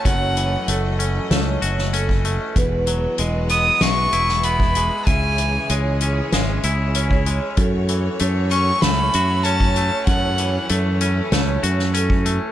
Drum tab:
HH |x-x-x-x-x-x-x-x-|x-x-x-x-x-x-x-x-|x-x-x-x-x-x-x-x-|x-x-x-x-x-x-x-x-|
SD |--------o--o----|--------o--o----|--------o-------|--------o-------|
BD |o------------o--|o------------o--|o------------o--|o------------o--|

HH |x-x-x-x-x-x-x-x-|
SD |--------o--o----|
BD |o------------o--|